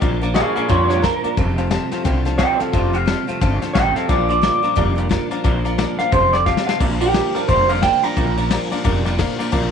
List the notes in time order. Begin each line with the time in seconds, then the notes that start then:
0.01 A#1 A#2 F3 A#3 D4 F4 D5 F5 A#5, kick, closed hi-hat
0.21 A#2 F3 A#3 D4 F4 D5 F5 A#5, closed hi-hat
0.34 A#2 F3 A#3 D4 F4 G#4 D5 F5 A#5, snare, closed hi-hat
0.55 A#2 F3 A#3 D4 F4 G#4 D5 F5 A#5, muted upright bass stroke, closed hi-hat
0.68 F2 A#2 F3 G3 A#3 D4 F4 C#5 D5 F5 A#5, kick, snare, closed hi-hat
0.88 A#2 G3 A#3 D4 F4 C#5 D5 F5 A#5, snare, closed hi-hat
1.02 A#2 F3 A#3 D4 F4 A#4 D5 F5 A#5, kick, snare, closed hi-hat
1.24 A#2 F3 A#3 D4 F4 D5 F5 A#5, muted upright bass stroke, closed hi-hat
1.37 F1 F2 C3 F3 A3 C4 F4 C5 F5 A5, kick, closed hi-hat
1.57 F2 C3 F3 A3 C4 F4 C5 F5 A5, closed hi-hat
1.70 F2 C3 F3 A3 C4 F4 C5 F5 A5, snare, closed hi-hat
1.91 F2 C3 F3 A3 C4 F4 C5 F5 A5, muted upright bass stroke, snare, closed hi-hat
2.04 C2 F2 C3 D3 F3 A3 C4 F4 C5 F5 G5, kick, snare, closed hi-hat
2.25 F2 D3 F3 A3 C4 F4 C5 F5 A5, snare, closed hi-hat
2.38 F2 C3 F3 A3 C4 F4 C5 D#5 F5 G5, kick, snare, closed hi-hat
2.59 F2 C3 F3 A3 C4 F4 A4 C5 F5 A5, muted upright bass stroke, snare, closed hi-hat
2.73 F1 F2 C3 F3 A3 C4 F4 C5 D5 F5 A5, kick, closed hi-hat
2.93 F2 C3 F3 A3 C4 F4 C5 F5 G5, closed hi-hat
3.06 F2 C3 F3 A3 C4 F4 C5 F5 A5, snare, closed hi-hat
3.27 F2 C3 F3 A3 C4 F4 C5 F5 A5, muted upright bass stroke, closed hi-hat
3.41 G1 F2 C3 D3 F3 A3 C4 F4 C5 F5 A5, kick, snare, closed hi-hat
3.61 F2 D3 F3 A3 C4 F4 C5 F5 A5, muted upright bass stroke, snare, closed hi-hat
3.73 A1 F2 C3 C4 F4 C5 D#5 F5 G5, kick, snare, closed hi-hat
3.95 F2 C3 F3 A3 C4 F4 A4 C5 F5 A5, snare, closed hi-hat
4.08 A#1 A#2 F3 A#3 D4 F4 D5 F5 A#5, kick, closed hi-hat
4.29 A#2 F3 A#3 D4 F4 D5 F5 C6, closed hi-hat
4.41 A#2 F3 A#3 D4 F4 D5 F5 A#5, snare, closed hi-hat
4.63 A#2 F3 A#3 D4 F4 D5 F5 A#5, muted upright bass stroke, closed hi-hat
4.76 F1 A#2 F3 G3 A#3 D4 F4 D5 F5 A#5, kick, closed hi-hat
4.96 A#2 G3 A#3 D4 F4 D5 F5 A#5, closed hi-hat
5.09 A#2 F3 A#3 D4 F4 D5 F5 A#5, kick, snare, closed hi-hat
5.30 A#2 F3 A#3 D4 F4 D5 F5 A#5, muted upright bass stroke, closed hi-hat
5.44 A#1 A#2 F3 A#3 D4 F4 D5 F5 A#5, kick, closed hi-hat
5.65 A#2 F3 A#3 D4 F4 D5 F5 A#5, closed hi-hat
5.78 A#2 F3 A#3 D4 F4 D5 F5 A#5, snare, closed hi-hat
5.98 A#2 F3 A#3 D4 F4 D5 F5 A#5, muted upright bass stroke, snare, closed hi-hat
6.11 F1 F2 C3 F3 A3 C4 F4 C5 F5 A5, kick, closed hi-hat
6.33 F2 D3 F3 A3 C4 F4 C5 D5 F5 G5, snare, closed hi-hat
6.46 F2 C3 F3 A3 C4 F4 C5 F5 A5, kick, snare
6.57 snare
6.66 F2 C3 F3 A3 C4 F4 C5 F5 A5, muted upright bass stroke, snare
6.79 A#1 A#2 F3 A#3 D4 F4 D5 F5 A#5, kick, ride
7.00 A#2 F3 A#3 D4 F4 G4 D5 F5 A#5, ride
7.14 A#2 F3 A#3 D4 F4 D5 F5 A#5, snare, ride
7.34 A#2 F3 A#3 D4 F4 A#4 D5 F5 A5, muted upright bass stroke, snare, ride
7.48 F1 A#2 F3 G3 A#3 D4 F4 C5 D5 F5 A#5, kick, snare, ride
7.69 A#2 G3 A#3 D4 F4 D5 F5 A#5, snare, ride
7.82 A#2 F3 A#3 D4 F4 D5 F5 G5 A#5, kick, snare, ride
8.03 A#2 F3 A#3 D4 F4 D5 F5 A#5, muted upright bass stroke, snare, ride
8.16 A#1 A#2 F3 A#3 D4 F4 D5 F5 A#5, kick, ride
8.37 A#2 F3 A#3 D4 F4 D5 F5 A#5, ride
8.51 A#2 F3 A#3 D4 F4 D5 F5 A#5, snare, ride
8.71 A#2 F3 A#3 D4 F4 D5 F5 A#5, muted upright bass stroke, snare, ride
8.84 F1 A#2 F3 G3 A#3 D4 F4 D5 F5 A#5, kick, ride
9.05 A#2 G3 A#3 D4 F4 D5 F5 A#5, snare, ride
9.18 A#2 F3 A#3 D4 F4 D5 F5 A#5, kick, snare, ride
9.38 A#2 F3 A#3 D4 F4 D5 F5 A#5, muted upright bass stroke, snare, ride
9.52 A#1 A#2 F3 A#3 D4 F4 D5 F5 A#5, kick, ride